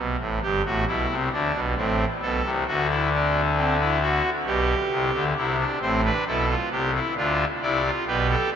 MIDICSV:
0, 0, Header, 1, 2, 480
1, 0, Start_track
1, 0, Tempo, 900901
1, 1426, Time_signature, 3, 2, 24, 8
1, 4558, End_track
2, 0, Start_track
2, 0, Title_t, "Pipe organ"
2, 0, Program_c, 0, 19
2, 0, Note_on_c, 0, 35, 62
2, 0, Note_on_c, 0, 47, 68
2, 88, Note_off_c, 0, 35, 0
2, 88, Note_off_c, 0, 47, 0
2, 104, Note_on_c, 0, 33, 61
2, 105, Note_on_c, 0, 45, 63
2, 209, Note_off_c, 0, 33, 0
2, 209, Note_off_c, 0, 45, 0
2, 226, Note_on_c, 0, 43, 60
2, 226, Note_on_c, 0, 67, 76
2, 227, Note_on_c, 0, 31, 62
2, 329, Note_off_c, 0, 43, 0
2, 330, Note_off_c, 0, 31, 0
2, 330, Note_off_c, 0, 67, 0
2, 347, Note_on_c, 0, 45, 63
2, 348, Note_on_c, 0, 33, 63
2, 348, Note_on_c, 0, 66, 69
2, 450, Note_off_c, 0, 33, 0
2, 450, Note_off_c, 0, 45, 0
2, 450, Note_off_c, 0, 66, 0
2, 463, Note_on_c, 0, 35, 64
2, 463, Note_on_c, 0, 47, 64
2, 464, Note_on_c, 0, 64, 80
2, 567, Note_off_c, 0, 35, 0
2, 567, Note_off_c, 0, 47, 0
2, 582, Note_on_c, 0, 36, 65
2, 583, Note_on_c, 0, 48, 61
2, 613, Note_off_c, 0, 64, 0
2, 687, Note_off_c, 0, 36, 0
2, 687, Note_off_c, 0, 48, 0
2, 704, Note_on_c, 0, 50, 68
2, 704, Note_on_c, 0, 62, 80
2, 705, Note_on_c, 0, 38, 69
2, 808, Note_off_c, 0, 38, 0
2, 808, Note_off_c, 0, 50, 0
2, 825, Note_on_c, 0, 47, 66
2, 827, Note_on_c, 0, 35, 62
2, 853, Note_off_c, 0, 62, 0
2, 929, Note_off_c, 0, 35, 0
2, 929, Note_off_c, 0, 47, 0
2, 941, Note_on_c, 0, 33, 66
2, 942, Note_on_c, 0, 45, 67
2, 943, Note_on_c, 0, 60, 83
2, 1091, Note_off_c, 0, 33, 0
2, 1092, Note_off_c, 0, 45, 0
2, 1093, Note_off_c, 0, 60, 0
2, 1182, Note_on_c, 0, 35, 65
2, 1182, Note_on_c, 0, 69, 80
2, 1183, Note_on_c, 0, 47, 62
2, 1287, Note_off_c, 0, 35, 0
2, 1287, Note_off_c, 0, 47, 0
2, 1303, Note_on_c, 0, 36, 67
2, 1303, Note_on_c, 0, 48, 65
2, 1332, Note_off_c, 0, 69, 0
2, 1407, Note_off_c, 0, 36, 0
2, 1407, Note_off_c, 0, 48, 0
2, 1424, Note_on_c, 0, 38, 66
2, 1424, Note_on_c, 0, 66, 87
2, 1425, Note_on_c, 0, 50, 70
2, 1528, Note_off_c, 0, 66, 0
2, 1545, Note_on_c, 0, 64, 79
2, 1648, Note_off_c, 0, 64, 0
2, 1669, Note_on_c, 0, 62, 77
2, 1816, Note_off_c, 0, 62, 0
2, 1902, Note_on_c, 0, 60, 81
2, 2006, Note_off_c, 0, 60, 0
2, 2021, Note_on_c, 0, 64, 80
2, 2125, Note_off_c, 0, 64, 0
2, 2141, Note_on_c, 0, 66, 82
2, 2247, Note_off_c, 0, 38, 0
2, 2248, Note_off_c, 0, 50, 0
2, 2290, Note_off_c, 0, 66, 0
2, 2377, Note_on_c, 0, 35, 73
2, 2377, Note_on_c, 0, 47, 72
2, 2377, Note_on_c, 0, 67, 90
2, 2527, Note_off_c, 0, 35, 0
2, 2527, Note_off_c, 0, 47, 0
2, 2616, Note_on_c, 0, 48, 68
2, 2617, Note_on_c, 0, 36, 73
2, 2721, Note_off_c, 0, 48, 0
2, 2722, Note_off_c, 0, 36, 0
2, 2736, Note_on_c, 0, 38, 69
2, 2736, Note_on_c, 0, 50, 69
2, 2791, Note_off_c, 0, 67, 0
2, 2841, Note_off_c, 0, 38, 0
2, 2842, Note_off_c, 0, 50, 0
2, 2859, Note_on_c, 0, 36, 70
2, 2859, Note_on_c, 0, 48, 68
2, 2859, Note_on_c, 0, 64, 74
2, 2963, Note_off_c, 0, 64, 0
2, 2978, Note_on_c, 0, 62, 67
2, 3008, Note_off_c, 0, 48, 0
2, 3009, Note_off_c, 0, 36, 0
2, 3083, Note_off_c, 0, 62, 0
2, 3099, Note_on_c, 0, 72, 83
2, 3100, Note_on_c, 0, 60, 66
2, 3101, Note_on_c, 0, 33, 67
2, 3101, Note_on_c, 0, 45, 67
2, 3204, Note_off_c, 0, 60, 0
2, 3204, Note_off_c, 0, 72, 0
2, 3222, Note_on_c, 0, 62, 63
2, 3223, Note_on_c, 0, 71, 79
2, 3250, Note_off_c, 0, 33, 0
2, 3250, Note_off_c, 0, 45, 0
2, 3325, Note_off_c, 0, 62, 0
2, 3325, Note_off_c, 0, 71, 0
2, 3340, Note_on_c, 0, 47, 69
2, 3341, Note_on_c, 0, 64, 68
2, 3341, Note_on_c, 0, 69, 80
2, 3342, Note_on_c, 0, 35, 64
2, 3444, Note_off_c, 0, 64, 0
2, 3462, Note_on_c, 0, 65, 65
2, 3489, Note_off_c, 0, 47, 0
2, 3489, Note_off_c, 0, 69, 0
2, 3490, Note_off_c, 0, 35, 0
2, 3564, Note_off_c, 0, 65, 0
2, 3578, Note_on_c, 0, 48, 69
2, 3579, Note_on_c, 0, 36, 70
2, 3579, Note_on_c, 0, 67, 78
2, 3683, Note_off_c, 0, 67, 0
2, 3701, Note_on_c, 0, 64, 66
2, 3727, Note_off_c, 0, 48, 0
2, 3728, Note_off_c, 0, 36, 0
2, 3803, Note_off_c, 0, 64, 0
2, 3819, Note_on_c, 0, 38, 73
2, 3819, Note_on_c, 0, 50, 68
2, 3820, Note_on_c, 0, 62, 71
2, 3820, Note_on_c, 0, 65, 79
2, 3968, Note_off_c, 0, 38, 0
2, 3968, Note_off_c, 0, 50, 0
2, 3969, Note_off_c, 0, 62, 0
2, 3969, Note_off_c, 0, 65, 0
2, 4060, Note_on_c, 0, 74, 80
2, 4061, Note_on_c, 0, 36, 71
2, 4061, Note_on_c, 0, 48, 66
2, 4061, Note_on_c, 0, 64, 67
2, 4164, Note_off_c, 0, 64, 0
2, 4183, Note_on_c, 0, 65, 64
2, 4210, Note_off_c, 0, 36, 0
2, 4210, Note_off_c, 0, 48, 0
2, 4210, Note_off_c, 0, 74, 0
2, 4286, Note_off_c, 0, 65, 0
2, 4301, Note_on_c, 0, 35, 70
2, 4301, Note_on_c, 0, 47, 67
2, 4302, Note_on_c, 0, 67, 74
2, 4303, Note_on_c, 0, 71, 84
2, 4406, Note_off_c, 0, 71, 0
2, 4421, Note_on_c, 0, 69, 82
2, 4451, Note_off_c, 0, 35, 0
2, 4451, Note_off_c, 0, 47, 0
2, 4526, Note_off_c, 0, 69, 0
2, 4530, Note_off_c, 0, 67, 0
2, 4540, Note_on_c, 0, 38, 65
2, 4540, Note_on_c, 0, 50, 64
2, 4540, Note_on_c, 0, 67, 81
2, 4558, Note_off_c, 0, 38, 0
2, 4558, Note_off_c, 0, 50, 0
2, 4558, Note_off_c, 0, 67, 0
2, 4558, End_track
0, 0, End_of_file